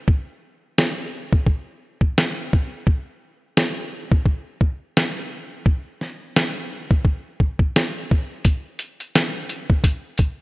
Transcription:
0.08 kick
0.78 snare
1.33 kick
1.47 kick
2.01 kick
2.18 snare
2.53 kick
2.87 kick
3.57 snare
4.12 kick
4.26 kick
4.61 kick
4.97 snare
5.66 kick
6.01 snare
6.36 snare
6.91 kick
7.05 kick
7.40 kick
7.59 kick
7.76 snare
8.11 kick
8.45 kick, closed hi-hat
8.79 closed hi-hat
9.00 closed hi-hat
9.15 snare, closed hi-hat
9.49 closed hi-hat
9.70 kick
9.84 kick, closed hi-hat
10.18 kick, closed hi-hat

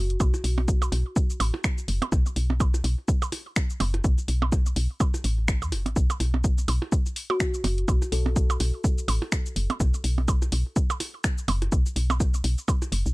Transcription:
Already playing: F#1
0.10 closed hi-hat
0.20 B1, kick, percussion blips, cabasa
0.34 percussion blips, cabasa
0.44 B1, open hi-hat
0.58 percussion blips
0.68 kick, cabasa
0.82 percussion blips, cabasa
0.92 B1, open hi-hat, percussion blips
1.16 kick, cabasa
1.30 cabasa
1.40 A1, open hi-hat, percussion blips
1.54 percussion blips
1.64 finger snap, kick, cabasa
1.78 cabasa
1.88 F#1, open hi-hat
2.02 closed hi-hat, percussion blips
2.12 B1, kick, percussion blips, cabasa
2.26 cabasa
2.36 B1, open hi-hat
2.50 percussion blips
2.60 kick, percussion blips, cabasa
2.74 percussion blips, cabasa
2.84 B1, open hi-hat
3.08 kick, cabasa
3.22 percussion blips, cabasa
3.32 open hi-hat, percussion blips
3.56 finger snap, kick, cabasa
3.70 cabasa
3.80 F#1, open hi-hat, percussion blips
3.94 closed hi-hat, percussion blips
4.04 B1, kick, cabasa
4.18 cabasa
4.28 B1, open hi-hat
4.42 percussion blips
4.52 kick, percussion blips, cabasa
4.66 cabasa
4.76 B1, open hi-hat
5.00 kick, percussion blips, cabasa
5.14 percussion blips, cabasa
5.24 A1, open hi-hat
5.48 finger snap, kick, cabasa
5.62 E2, percussion blips, cabasa
5.72 F#1, open hi-hat, percussion blips
5.86 A1, closed hi-hat, percussion blips
5.96 B1, kick, cabasa
6.10 percussion blips, cabasa
6.20 B1, open hi-hat, percussion blips
6.34 percussion blips
6.44 kick, cabasa
6.58 cabasa
6.68 B1, open hi-hat, percussion blips
6.82 percussion blips
6.92 kick, cabasa
7.06 cabasa
7.16 open hi-hat
7.30 F#4, percussion blips
7.40 finger snap, kick, percussion blips, cabasa
7.54 cabasa
7.64 F#1, open hi-hat, percussion blips
7.78 closed hi-hat
7.88 B1, kick, percussion blips, cabasa
8.02 percussion blips, cabasa
8.12 B1 A4, open hi-hat
8.26 percussion blips
8.36 kick, cabasa
8.50 percussion blips, cabasa
8.60 B1, open hi-hat, percussion blips
8.84 kick, cabasa
8.98 cabasa
9.08 A1, open hi-hat, percussion blips
9.22 percussion blips
9.32 finger snap, kick, cabasa
9.46 cabasa
9.56 F#1, open hi-hat
9.70 closed hi-hat, percussion blips
9.80 B1, kick, percussion blips, cabasa
9.94 cabasa
10.04 B1, open hi-hat
10.18 percussion blips
10.28 kick, percussion blips, cabasa
10.42 percussion blips, cabasa
10.52 B1, open hi-hat
10.76 kick, cabasa
10.90 percussion blips, cabasa
11.00 open hi-hat, percussion blips
11.24 finger snap, kick, cabasa
11.38 cabasa
11.48 F#1, open hi-hat, percussion blips
11.62 closed hi-hat, percussion blips
11.72 B1, kick, cabasa
11.86 cabasa
11.96 B1, open hi-hat
12.10 percussion blips, cabasa
12.20 kick, percussion blips, cabasa
12.34 cabasa
12.44 B1, open hi-hat
12.58 cabasa
12.68 kick, percussion blips, cabasa
12.82 percussion blips, cabasa
12.92 F#1, open hi-hat
13.06 B1, cabasa

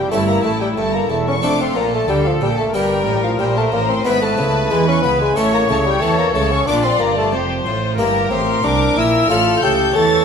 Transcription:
Already playing: F1 F2 G3 G4 G5
0.11 G1 G2 A3 C#4 E4 A5
0.27 A#3 A#5
0.43 A1 A2 A3 A5
0.61 G3 G5
0.76 G1 G2 A3 A4 A5
0.94 A#3 A#5
1.09 E1 E2 A3 A5
1.27 C#4 C#6
1.42 F1 F2 A3 D4 F4 A4 D6
1.60 C4 C6
1.75 A#1 A#2 A#3 A#5
1.92 A3 A5
2.07 D2 D3 G3 A4 G5
2.25 F3 F5
2.40 A#1 A#2 G3 G5
2.58 A3 A5
2.73 G1 G2 G3 A#3 D4 G4 A#4 G5
3.06 A1 A2
3.23 F3 F5
3.39 A#1 A#2 G3 C5 G5
3.56 A3 A5
3.72 A1 A2 A#3 A#5
3.89 C4 C6
4.04 G#1 G#2 B3 D4 E4 B4 B5
4.21 A3 A5
4.37 C#2 C#3
4.70 E2 E3 G#3 B4 G#5
4.88 C#4 C#6
5.03 C#2 C#3 B3 B5
5.21 G#3 G#5
5.36 A1 A2 A3 C#4 E4 A4 C#5 A5
5.53 A#3 A#5
5.68 C#2 C#3 A3 A5
5.86 G3 G5
6.00 E2 E3 A3 A4 A5
6.18 A#3 A#5
6.34 C#2 C#3 A3 A5
6.52 C#4 C#6
6.66 A#1 A#2 A#3 D4 F4 D5 D6
6.84 C4 C6
6.99 G1 G2 A#3 A#5
7.17 A3 A5
7.32 F1 F2 G4 C5
7.65 A1 A2 F4
7.97 G1 G2 A#3 E4 G4 A#4 A#5
8.31 A1 A2 C4 C6
8.63 C2 C3 D4 A#4 D6
8.96 A#1 A#2 E4 E6
9.29 A1 A2 A3 C#4 E4 F4 A4 F6
9.63 C#2 C#3 G4 G6
9.95 E2 E3 A4 C#5 A6

